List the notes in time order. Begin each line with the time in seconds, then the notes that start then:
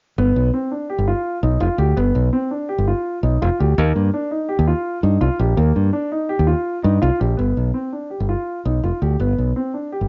0.18 G1 B3
0.36 B1
0.54 C4
0.71 D4
0.90 G4
0.98 G1
1.08 F4
1.43 B1 D#4
1.60 F1 F4
1.78 D2 G4
1.97 G1 B3
2.15 B1
2.33 C4
2.51 D4
2.69 G4
2.78 G1
2.88 F4
3.23 B1 D#4
3.42 F1 F4
3.60 D2 G4
3.78 D#2 A#3
3.96 G2
4.14 D4
4.31 D#4
4.49 G4
4.59 D#2
4.68 F4
5.03 G2 D#4
5.21 C2 F4
5.40 A#1 G4
5.57 D#2 A#3
5.76 G2
5.93 D4
6.12 D#4
6.29 G4
6.39 D#2
6.47 F4
6.83 G2 D#4
7.02 C2 F4
7.20 A#1 G4
7.37 G1 B3
7.57 B1
7.74 C4
7.92 D4
8.10 G4
8.20 G1
8.29 F4
8.65 B1 D#4
8.83 F1 F4
9.02 D2 G4
9.19 G1 B3
9.38 B1
9.56 C4
9.74 D4
9.92 G4
10.01 G1